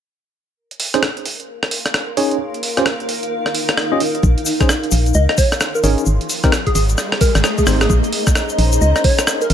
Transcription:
0.57 A#4
0.71 closed hi-hat
0.80 open hi-hat
0.94 C#4 D#4 G#4 C5, cross-stick, closed hi-hat
0.99 F5, cross-stick
1.17 closed hi-hat
1.25 open hi-hat
1.40 C6, closed hi-hat
1.63 cross-stick
1.71 open hi-hat
1.86 cross-stick, closed hi-hat
1.94 cross-stick
2.17 C#4 D#4 G#4 C#5, open hi-hat
2.31 closed hi-hat
2.40 D#4
2.54 closed hi-hat
2.63 open hi-hat
2.77 C#4 F4 G4 C5, cross-stick, closed hi-hat
2.86 cross-stick
3.00 closed hi-hat
3.09 open hi-hat
3.23 closed hi-hat
3.46 cross-stick
3.55 open hi-hat
3.69 cross-stick, closed hi-hat
3.77 cross-stick
3.92 C#4 F4 G4 D#5
4.00 open hi-hat
4.15 closed hi-hat
4.23 A#1, kick, riser, shaker
4.38 closed hi-hat
4.46 open hi-hat, shaker
4.60 C#4 D#4 G#4 C5, kick, cross-stick, closed hi-hat, shaker
4.69 cross-stick, shaker
4.83 closed hi-hat
4.91 A#1, open hi-hat, shaker
5.06 C6, closed hi-hat, shaker
5.14 C#2 D#5, shaker
5.29 D#5, cross-stick
5.38 C#5, kick, open hi-hat, shaker
5.52 cross-stick, closed hi-hat, shaker
5.61 cross-stick, shaker
5.75 A#4, shaker
5.84 G#1 C#4 D#4 G#4 A#4 C#5, open hi-hat, shaker
5.98 closed hi-hat, shaker
6.06 G#1 G#4, shaker
6.21 closed hi-hat
6.26 D#5 A#5, open hi-hat, shaker
6.43 C4 D#4 G4 A#4, kick, cross-stick, closed hi-hat, shaker
6.52 cross-stick, shaker
6.66 G#4, kick, closed hi-hat
6.75 G#1 G#4, open hi-hat, shaker
6.89 closed hi-hat, shaker
6.98 cross-stick, shaker
7.12 cross-stick
7.21 A#4, kick, open hi-hat, shaker
7.35 G#1, cross-stick, closed hi-hat, shaker
7.44 G#4, cross-stick, shaker
7.58 G#4, kick, closed hi-hat, shaker
7.67 G#1 C4 D#4 G4 C5, cross-stick, open hi-hat, shaker
7.81 G#4, cross-stick, closed hi-hat, shaker
7.90 A#1 C#4 D#4 G#4 A#4 C5, kick, shaker
8.04 closed hi-hat, shaker
8.13 open hi-hat
8.27 kick, cross-stick, closed hi-hat, shaker
8.35 F5, cross-stick, shaker
8.49 closed hi-hat, shaker
8.58 A#1, open hi-hat
8.72 C6, closed hi-hat, shaker
8.81 C#2 D#5, shaker
8.96 D#5, cross-stick, closed hi-hat, shaker
9.04 C#5, kick, open hi-hat
9.18 cross-stick, closed hi-hat, shaker
9.27 cross-stick, shaker
9.41 A#4, closed hi-hat, shaker
9.50 G#1 A#4, open hi-hat

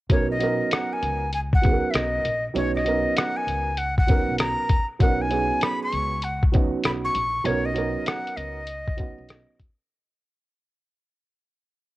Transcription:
0.10 B1 F#3 B3 C#4 D#4 A#4 C#5, kick, closed hi-hat
0.31 D#5
0.39 F#3 B3 C#4 D#4, closed hi-hat
0.43 A#4
0.71 F#5, cross-stick, closed hi-hat
0.93 G#5
1.03 C#2, closed hi-hat
1.33 G#5, closed hi-hat
1.53 F#5, kick
1.62 F#3 B3 C#4 D#4 G#4, kick, closed hi-hat
1.72 A#4
1.91 B1 D#5 E5, closed hi-hat
1.95 cross-stick
2.25 A#1, closed hi-hat
2.54 B1 F#3 B3 C#4 D#4 C#5, closed hi-hat
2.75 D#5, cross-stick
2.84 F#3 B3 C#4 D#4 A#4, closed hi-hat
3.16 F#5, cross-stick, closed hi-hat
3.37 G#5
3.47 C#2, closed hi-hat
3.77 F#5, closed hi-hat
3.98 F#5, kick
4.07 F#3 B3 C#4 D#4 A#4, kick, closed hi-hat
4.29 B1
4.38 A#5, cross-stick, closed hi-hat
4.69 kick, closed hi-hat
4.99 B1 F#3 B3 C#4 D#4 A#4 F#5, kick, closed hi-hat
5.22 G#5
5.29 F#3 B3 C#4 D#4 G#4, closed hi-hat
5.61 B5, cross-stick, closed hi-hat
5.83 C#6
5.93 C#2, closed hi-hat
6.22 F#5, closed hi-hat
6.43 kick
6.52 F#3 B3 C#4 D#4 F#4, kick, closed hi-hat
6.84 B1 B5, cross-stick, closed hi-hat
7.05 C#6
7.15 A#1, closed hi-hat
7.44 B1 F#3 B3 C#4 D#4 A#4 C#5, closed hi-hat
7.65 D#5
7.74 F#3 B3 C#4 D#4 A#4, closed hi-hat
8.06 F#5, cross-stick, closed hi-hat
8.27 closed hi-hat
8.37 C#2 D#5, closed hi-hat
8.67 closed hi-hat
8.88 kick
8.97 F#3 B3 C#4 D#4 F#4, kick, closed hi-hat
9.18 B1
9.29 cross-stick, closed hi-hat
9.60 kick, closed hi-hat

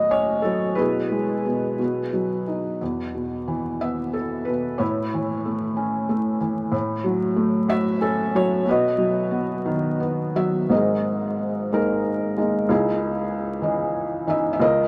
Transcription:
Already playing: A2 F#3 A3 F#4 D#5
0.11 C#4 C#5
0.42 F#3 A4
0.75 B2 E4 G#4 B4
1.12 G#3
1.46 B2
1.79 B2
2.13 F#3
2.48 D#4
2.81 E2
3.15 B2
3.47 E3
3.80 B3 E5
4.13 A4
4.45 B2 B4
4.78 A2 E4 C#5
5.14 E3
5.46 A3
5.77 C#4
6.09 A3
6.41 E3
6.72 A2
7.04 F#3
7.36 A3
7.68 F#4 E5
8.01 C#4 A4
8.35 F#3 C#5
8.66 B2 F#4 B4
8.70 D#5
8.98 F#3
9.31 B3
9.66 D#3
10.00 B3
10.35 F#3 E5
10.69 G#1 G#2 G#4 A#4 D#5
11.72 G#3 A#3 D#4 A#4
12.37 G#3 A#3 D#4
12.69 C#2 D#4 E4 G#4
13.62 E3 C#4 D#5
14.27 E3 C#4 D#4 E5
14.53 E5
14.60 C#2 A#4 D#5

